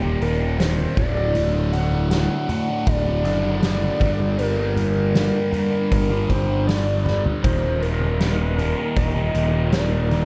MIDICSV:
0, 0, Header, 1, 6, 480
1, 0, Start_track
1, 0, Tempo, 760456
1, 851, Time_signature, 4, 2, 24, 8
1, 6470, End_track
2, 0, Start_track
2, 0, Title_t, "Analog synth lead"
2, 0, Program_c, 0, 81
2, 0, Note_on_c, 0, 67, 89
2, 141, Note_on_c, 0, 70, 83
2, 150, Note_off_c, 0, 67, 0
2, 371, Note_on_c, 0, 72, 91
2, 381, Note_off_c, 0, 70, 0
2, 600, Note_off_c, 0, 72, 0
2, 604, Note_on_c, 0, 74, 109
2, 1089, Note_on_c, 0, 78, 104
2, 1099, Note_off_c, 0, 74, 0
2, 1319, Note_off_c, 0, 78, 0
2, 1323, Note_on_c, 0, 78, 99
2, 1810, Note_on_c, 0, 74, 112
2, 1819, Note_off_c, 0, 78, 0
2, 2761, Note_on_c, 0, 70, 100
2, 2771, Note_off_c, 0, 74, 0
2, 3727, Note_off_c, 0, 70, 0
2, 3730, Note_on_c, 0, 70, 88
2, 3976, Note_on_c, 0, 72, 93
2, 3985, Note_off_c, 0, 70, 0
2, 4211, Note_on_c, 0, 74, 104
2, 4221, Note_off_c, 0, 72, 0
2, 4572, Note_off_c, 0, 74, 0
2, 4694, Note_on_c, 0, 72, 96
2, 4938, Note_on_c, 0, 70, 105
2, 4948, Note_off_c, 0, 72, 0
2, 5657, Note_off_c, 0, 70, 0
2, 5661, Note_on_c, 0, 75, 97
2, 6113, Note_off_c, 0, 75, 0
2, 6145, Note_on_c, 0, 74, 100
2, 6470, Note_off_c, 0, 74, 0
2, 6470, End_track
3, 0, Start_track
3, 0, Title_t, "Tonewheel organ"
3, 0, Program_c, 1, 16
3, 4688, Note_on_c, 1, 58, 63
3, 4692, Note_on_c, 1, 63, 62
3, 4694, Note_on_c, 1, 70, 80
3, 4696, Note_on_c, 1, 55, 63
3, 6470, Note_off_c, 1, 55, 0
3, 6470, Note_off_c, 1, 58, 0
3, 6470, Note_off_c, 1, 63, 0
3, 6470, Note_off_c, 1, 70, 0
3, 6470, End_track
4, 0, Start_track
4, 0, Title_t, "Distorted electric guitar"
4, 0, Program_c, 2, 30
4, 4, Note_on_c, 2, 51, 75
4, 25, Note_on_c, 2, 46, 57
4, 132, Note_on_c, 2, 39, 71
4, 135, Note_off_c, 2, 46, 0
4, 142, Note_on_c, 2, 46, 69
4, 146, Note_off_c, 2, 51, 0
4, 153, Note_on_c, 2, 51, 81
4, 239, Note_off_c, 2, 51, 0
4, 247, Note_on_c, 2, 51, 70
4, 258, Note_off_c, 2, 46, 0
4, 265, Note_on_c, 2, 46, 54
4, 358, Note_off_c, 2, 39, 0
4, 366, Note_on_c, 2, 39, 75
4, 367, Note_off_c, 2, 46, 0
4, 375, Note_on_c, 2, 46, 90
4, 379, Note_off_c, 2, 51, 0
4, 386, Note_on_c, 2, 51, 98
4, 594, Note_off_c, 2, 39, 0
4, 599, Note_off_c, 2, 46, 0
4, 601, Note_on_c, 2, 38, 84
4, 605, Note_off_c, 2, 51, 0
4, 619, Note_on_c, 2, 45, 90
4, 629, Note_on_c, 2, 50, 87
4, 710, Note_off_c, 2, 50, 0
4, 717, Note_on_c, 2, 50, 64
4, 732, Note_off_c, 2, 45, 0
4, 740, Note_on_c, 2, 45, 53
4, 826, Note_off_c, 2, 38, 0
4, 833, Note_on_c, 2, 38, 83
4, 839, Note_off_c, 2, 45, 0
4, 847, Note_on_c, 2, 45, 96
4, 849, Note_off_c, 2, 50, 0
4, 857, Note_on_c, 2, 50, 95
4, 953, Note_off_c, 2, 50, 0
4, 961, Note_on_c, 2, 50, 70
4, 976, Note_off_c, 2, 45, 0
4, 983, Note_on_c, 2, 45, 49
4, 1085, Note_off_c, 2, 38, 0
4, 1093, Note_on_c, 2, 38, 71
4, 1096, Note_off_c, 2, 45, 0
4, 1103, Note_on_c, 2, 45, 77
4, 1107, Note_off_c, 2, 50, 0
4, 1115, Note_on_c, 2, 50, 77
4, 1315, Note_off_c, 2, 38, 0
4, 1322, Note_on_c, 2, 38, 98
4, 1325, Note_off_c, 2, 45, 0
4, 1332, Note_on_c, 2, 45, 103
4, 1336, Note_off_c, 2, 50, 0
4, 1344, Note_on_c, 2, 50, 95
4, 1556, Note_off_c, 2, 38, 0
4, 1563, Note_on_c, 2, 38, 62
4, 1567, Note_off_c, 2, 45, 0
4, 1574, Note_on_c, 2, 45, 63
4, 1578, Note_off_c, 2, 50, 0
4, 1585, Note_on_c, 2, 50, 73
4, 1676, Note_off_c, 2, 50, 0
4, 1683, Note_on_c, 2, 50, 74
4, 1698, Note_off_c, 2, 45, 0
4, 1706, Note_on_c, 2, 45, 57
4, 1916, Note_off_c, 2, 50, 0
4, 1924, Note_on_c, 2, 50, 58
4, 1928, Note_off_c, 2, 38, 0
4, 1936, Note_off_c, 2, 45, 0
4, 1943, Note_on_c, 2, 45, 56
4, 2045, Note_on_c, 2, 38, 68
4, 2047, Note_off_c, 2, 45, 0
4, 2055, Note_on_c, 2, 45, 69
4, 2057, Note_off_c, 2, 50, 0
4, 2065, Note_on_c, 2, 50, 69
4, 2157, Note_off_c, 2, 50, 0
4, 2164, Note_on_c, 2, 50, 68
4, 2176, Note_off_c, 2, 45, 0
4, 2183, Note_on_c, 2, 45, 54
4, 2270, Note_off_c, 2, 38, 0
4, 2278, Note_on_c, 2, 38, 83
4, 2282, Note_off_c, 2, 45, 0
4, 2290, Note_on_c, 2, 45, 88
4, 2292, Note_off_c, 2, 50, 0
4, 2299, Note_on_c, 2, 50, 93
4, 2510, Note_off_c, 2, 38, 0
4, 2516, Note_off_c, 2, 45, 0
4, 2521, Note_off_c, 2, 50, 0
4, 2526, Note_on_c, 2, 43, 91
4, 2537, Note_on_c, 2, 50, 86
4, 2548, Note_on_c, 2, 55, 93
4, 2638, Note_off_c, 2, 55, 0
4, 2641, Note_on_c, 2, 55, 69
4, 2658, Note_off_c, 2, 50, 0
4, 2666, Note_on_c, 2, 50, 57
4, 2750, Note_off_c, 2, 43, 0
4, 2758, Note_on_c, 2, 43, 93
4, 2764, Note_off_c, 2, 50, 0
4, 2771, Note_on_c, 2, 50, 94
4, 2773, Note_off_c, 2, 55, 0
4, 2776, Note_on_c, 2, 55, 93
4, 2882, Note_off_c, 2, 55, 0
4, 2884, Note_on_c, 2, 55, 68
4, 2900, Note_off_c, 2, 50, 0
4, 2907, Note_on_c, 2, 50, 58
4, 2998, Note_off_c, 2, 43, 0
4, 3005, Note_on_c, 2, 43, 68
4, 3010, Note_off_c, 2, 50, 0
4, 3018, Note_on_c, 2, 50, 73
4, 3025, Note_off_c, 2, 55, 0
4, 3028, Note_on_c, 2, 55, 74
4, 3240, Note_off_c, 2, 43, 0
4, 3248, Note_on_c, 2, 43, 93
4, 3251, Note_off_c, 2, 50, 0
4, 3259, Note_on_c, 2, 50, 90
4, 3265, Note_off_c, 2, 55, 0
4, 3267, Note_on_c, 2, 55, 92
4, 3477, Note_off_c, 2, 43, 0
4, 3484, Note_on_c, 2, 43, 58
4, 3490, Note_off_c, 2, 50, 0
4, 3498, Note_on_c, 2, 50, 61
4, 3504, Note_off_c, 2, 55, 0
4, 3507, Note_on_c, 2, 55, 68
4, 3600, Note_off_c, 2, 55, 0
4, 3603, Note_on_c, 2, 55, 67
4, 3616, Note_off_c, 2, 50, 0
4, 3624, Note_on_c, 2, 50, 58
4, 3844, Note_off_c, 2, 55, 0
4, 3846, Note_on_c, 2, 55, 63
4, 3849, Note_off_c, 2, 43, 0
4, 3861, Note_off_c, 2, 50, 0
4, 3868, Note_on_c, 2, 50, 53
4, 3967, Note_on_c, 2, 43, 65
4, 3976, Note_off_c, 2, 50, 0
4, 3984, Note_on_c, 2, 50, 65
4, 3990, Note_off_c, 2, 55, 0
4, 3992, Note_on_c, 2, 55, 80
4, 4083, Note_off_c, 2, 55, 0
4, 4086, Note_on_c, 2, 55, 73
4, 4097, Note_off_c, 2, 50, 0
4, 4105, Note_on_c, 2, 50, 55
4, 4189, Note_off_c, 2, 43, 0
4, 4196, Note_on_c, 2, 43, 84
4, 4202, Note_off_c, 2, 50, 0
4, 4210, Note_on_c, 2, 50, 96
4, 4219, Note_off_c, 2, 55, 0
4, 4222, Note_on_c, 2, 55, 101
4, 4433, Note_off_c, 2, 43, 0
4, 4441, Note_on_c, 2, 43, 73
4, 4444, Note_off_c, 2, 50, 0
4, 4451, Note_on_c, 2, 50, 66
4, 4458, Note_off_c, 2, 55, 0
4, 4460, Note_on_c, 2, 55, 72
4, 4566, Note_off_c, 2, 55, 0
4, 4568, Note_on_c, 2, 55, 64
4, 4579, Note_off_c, 2, 50, 0
4, 4587, Note_on_c, 2, 50, 52
4, 4673, Note_off_c, 2, 43, 0
4, 4683, Note_on_c, 2, 39, 88
4, 4686, Note_off_c, 2, 50, 0
4, 4695, Note_on_c, 2, 46, 89
4, 4701, Note_off_c, 2, 55, 0
4, 4703, Note_on_c, 2, 51, 99
4, 4801, Note_off_c, 2, 51, 0
4, 4803, Note_on_c, 2, 51, 69
4, 4819, Note_off_c, 2, 46, 0
4, 4827, Note_on_c, 2, 46, 53
4, 4922, Note_off_c, 2, 39, 0
4, 4925, Note_on_c, 2, 39, 80
4, 4931, Note_off_c, 2, 46, 0
4, 4938, Note_on_c, 2, 46, 75
4, 4946, Note_off_c, 2, 51, 0
4, 4949, Note_on_c, 2, 51, 77
4, 5171, Note_off_c, 2, 39, 0
4, 5174, Note_on_c, 2, 39, 88
4, 5180, Note_off_c, 2, 46, 0
4, 5187, Note_on_c, 2, 46, 98
4, 5192, Note_off_c, 2, 51, 0
4, 5194, Note_on_c, 2, 51, 96
4, 5411, Note_off_c, 2, 39, 0
4, 5419, Note_off_c, 2, 46, 0
4, 5419, Note_on_c, 2, 39, 59
4, 5427, Note_on_c, 2, 46, 66
4, 5429, Note_off_c, 2, 51, 0
4, 5437, Note_on_c, 2, 51, 67
4, 5528, Note_off_c, 2, 51, 0
4, 5535, Note_on_c, 2, 51, 81
4, 5550, Note_off_c, 2, 46, 0
4, 5557, Note_on_c, 2, 46, 58
4, 5768, Note_off_c, 2, 51, 0
4, 5776, Note_on_c, 2, 51, 75
4, 5777, Note_off_c, 2, 39, 0
4, 5788, Note_off_c, 2, 46, 0
4, 5795, Note_on_c, 2, 46, 56
4, 5896, Note_on_c, 2, 39, 66
4, 5901, Note_off_c, 2, 46, 0
4, 5908, Note_on_c, 2, 46, 73
4, 5909, Note_off_c, 2, 51, 0
4, 5916, Note_on_c, 2, 51, 74
4, 6003, Note_off_c, 2, 51, 0
4, 6010, Note_on_c, 2, 51, 80
4, 6023, Note_off_c, 2, 46, 0
4, 6031, Note_on_c, 2, 46, 62
4, 6124, Note_off_c, 2, 39, 0
4, 6132, Note_on_c, 2, 39, 83
4, 6138, Note_off_c, 2, 46, 0
4, 6146, Note_on_c, 2, 46, 85
4, 6150, Note_off_c, 2, 51, 0
4, 6158, Note_on_c, 2, 51, 98
4, 6365, Note_off_c, 2, 39, 0
4, 6372, Note_on_c, 2, 39, 72
4, 6374, Note_off_c, 2, 46, 0
4, 6381, Note_off_c, 2, 51, 0
4, 6381, Note_on_c, 2, 46, 68
4, 6389, Note_on_c, 2, 51, 75
4, 6470, Note_off_c, 2, 39, 0
4, 6470, Note_off_c, 2, 46, 0
4, 6470, Note_off_c, 2, 51, 0
4, 6470, End_track
5, 0, Start_track
5, 0, Title_t, "Picked electric bass"
5, 0, Program_c, 3, 34
5, 0, Note_on_c, 3, 27, 90
5, 98, Note_off_c, 3, 27, 0
5, 130, Note_on_c, 3, 27, 90
5, 540, Note_off_c, 3, 27, 0
5, 613, Note_on_c, 3, 26, 88
5, 1431, Note_off_c, 3, 26, 0
5, 1811, Note_on_c, 3, 26, 91
5, 2046, Note_off_c, 3, 26, 0
5, 2046, Note_on_c, 3, 30, 87
5, 2458, Note_off_c, 3, 30, 0
5, 2528, Note_on_c, 3, 31, 86
5, 3349, Note_off_c, 3, 31, 0
5, 3738, Note_on_c, 3, 31, 84
5, 3940, Note_off_c, 3, 31, 0
5, 3976, Note_on_c, 3, 31, 91
5, 4589, Note_off_c, 3, 31, 0
5, 4699, Note_on_c, 3, 27, 93
5, 5516, Note_off_c, 3, 27, 0
5, 5661, Note_on_c, 3, 27, 90
5, 5863, Note_off_c, 3, 27, 0
5, 5897, Note_on_c, 3, 27, 92
5, 6470, Note_off_c, 3, 27, 0
5, 6470, End_track
6, 0, Start_track
6, 0, Title_t, "Drums"
6, 12, Note_on_c, 9, 63, 69
6, 75, Note_off_c, 9, 63, 0
6, 136, Note_on_c, 9, 46, 49
6, 200, Note_off_c, 9, 46, 0
6, 378, Note_on_c, 9, 46, 65
6, 379, Note_on_c, 9, 38, 96
6, 441, Note_off_c, 9, 46, 0
6, 443, Note_off_c, 9, 38, 0
6, 489, Note_on_c, 9, 63, 66
6, 552, Note_off_c, 9, 63, 0
6, 613, Note_on_c, 9, 63, 61
6, 613, Note_on_c, 9, 64, 77
6, 614, Note_on_c, 9, 36, 95
6, 617, Note_on_c, 9, 46, 49
6, 676, Note_off_c, 9, 63, 0
6, 676, Note_off_c, 9, 64, 0
6, 677, Note_off_c, 9, 36, 0
6, 680, Note_off_c, 9, 46, 0
6, 738, Note_on_c, 9, 63, 64
6, 801, Note_off_c, 9, 63, 0
6, 851, Note_on_c, 9, 46, 65
6, 851, Note_on_c, 9, 64, 57
6, 914, Note_off_c, 9, 46, 0
6, 914, Note_off_c, 9, 64, 0
6, 1093, Note_on_c, 9, 46, 53
6, 1156, Note_off_c, 9, 46, 0
6, 1211, Note_on_c, 9, 63, 73
6, 1274, Note_off_c, 9, 63, 0
6, 1332, Note_on_c, 9, 46, 68
6, 1334, Note_on_c, 9, 38, 93
6, 1395, Note_off_c, 9, 46, 0
6, 1397, Note_off_c, 9, 38, 0
6, 1572, Note_on_c, 9, 64, 64
6, 1574, Note_on_c, 9, 46, 50
6, 1635, Note_off_c, 9, 64, 0
6, 1637, Note_off_c, 9, 46, 0
6, 1809, Note_on_c, 9, 46, 59
6, 1812, Note_on_c, 9, 36, 106
6, 1872, Note_off_c, 9, 46, 0
6, 1875, Note_off_c, 9, 36, 0
6, 1932, Note_on_c, 9, 63, 69
6, 1995, Note_off_c, 9, 63, 0
6, 2052, Note_on_c, 9, 46, 48
6, 2115, Note_off_c, 9, 46, 0
6, 2289, Note_on_c, 9, 46, 63
6, 2290, Note_on_c, 9, 38, 101
6, 2352, Note_off_c, 9, 46, 0
6, 2353, Note_off_c, 9, 38, 0
6, 2414, Note_on_c, 9, 63, 64
6, 2477, Note_off_c, 9, 63, 0
6, 2525, Note_on_c, 9, 63, 67
6, 2525, Note_on_c, 9, 64, 72
6, 2528, Note_on_c, 9, 46, 46
6, 2531, Note_on_c, 9, 36, 95
6, 2588, Note_off_c, 9, 63, 0
6, 2588, Note_off_c, 9, 64, 0
6, 2592, Note_off_c, 9, 46, 0
6, 2594, Note_off_c, 9, 36, 0
6, 2642, Note_on_c, 9, 63, 61
6, 2705, Note_off_c, 9, 63, 0
6, 2769, Note_on_c, 9, 46, 63
6, 2832, Note_off_c, 9, 46, 0
6, 3006, Note_on_c, 9, 64, 64
6, 3012, Note_on_c, 9, 46, 48
6, 3070, Note_off_c, 9, 64, 0
6, 3075, Note_off_c, 9, 46, 0
6, 3124, Note_on_c, 9, 63, 65
6, 3187, Note_off_c, 9, 63, 0
6, 3252, Note_on_c, 9, 46, 60
6, 3253, Note_on_c, 9, 38, 105
6, 3315, Note_off_c, 9, 46, 0
6, 3316, Note_off_c, 9, 38, 0
6, 3488, Note_on_c, 9, 64, 68
6, 3495, Note_on_c, 9, 46, 45
6, 3551, Note_off_c, 9, 64, 0
6, 3558, Note_off_c, 9, 46, 0
6, 3735, Note_on_c, 9, 36, 97
6, 3737, Note_on_c, 9, 46, 60
6, 3798, Note_off_c, 9, 36, 0
6, 3800, Note_off_c, 9, 46, 0
6, 3845, Note_on_c, 9, 63, 62
6, 3908, Note_off_c, 9, 63, 0
6, 3974, Note_on_c, 9, 46, 53
6, 3975, Note_on_c, 9, 36, 73
6, 4037, Note_off_c, 9, 46, 0
6, 4038, Note_off_c, 9, 36, 0
6, 4221, Note_on_c, 9, 46, 67
6, 4222, Note_on_c, 9, 38, 94
6, 4284, Note_off_c, 9, 46, 0
6, 4285, Note_off_c, 9, 38, 0
6, 4455, Note_on_c, 9, 63, 68
6, 4455, Note_on_c, 9, 64, 76
6, 4464, Note_on_c, 9, 38, 52
6, 4519, Note_off_c, 9, 63, 0
6, 4519, Note_off_c, 9, 64, 0
6, 4528, Note_off_c, 9, 38, 0
6, 4574, Note_on_c, 9, 63, 68
6, 4581, Note_on_c, 9, 43, 78
6, 4637, Note_off_c, 9, 63, 0
6, 4644, Note_off_c, 9, 43, 0
6, 4698, Note_on_c, 9, 36, 101
6, 4698, Note_on_c, 9, 46, 65
6, 4698, Note_on_c, 9, 64, 62
6, 4761, Note_off_c, 9, 36, 0
6, 4761, Note_off_c, 9, 46, 0
6, 4761, Note_off_c, 9, 64, 0
6, 4939, Note_on_c, 9, 46, 56
6, 5002, Note_off_c, 9, 46, 0
6, 5050, Note_on_c, 9, 63, 71
6, 5113, Note_off_c, 9, 63, 0
6, 5179, Note_on_c, 9, 46, 66
6, 5180, Note_on_c, 9, 38, 93
6, 5242, Note_off_c, 9, 46, 0
6, 5243, Note_off_c, 9, 38, 0
6, 5416, Note_on_c, 9, 64, 72
6, 5422, Note_on_c, 9, 46, 50
6, 5479, Note_off_c, 9, 64, 0
6, 5485, Note_off_c, 9, 46, 0
6, 5657, Note_on_c, 9, 46, 61
6, 5659, Note_on_c, 9, 36, 98
6, 5720, Note_off_c, 9, 46, 0
6, 5722, Note_off_c, 9, 36, 0
6, 5782, Note_on_c, 9, 63, 67
6, 5845, Note_off_c, 9, 63, 0
6, 5899, Note_on_c, 9, 46, 55
6, 5962, Note_off_c, 9, 46, 0
6, 6138, Note_on_c, 9, 46, 60
6, 6139, Note_on_c, 9, 38, 99
6, 6201, Note_off_c, 9, 46, 0
6, 6202, Note_off_c, 9, 38, 0
6, 6261, Note_on_c, 9, 63, 61
6, 6324, Note_off_c, 9, 63, 0
6, 6381, Note_on_c, 9, 63, 68
6, 6383, Note_on_c, 9, 46, 46
6, 6444, Note_off_c, 9, 63, 0
6, 6446, Note_off_c, 9, 46, 0
6, 6470, End_track
0, 0, End_of_file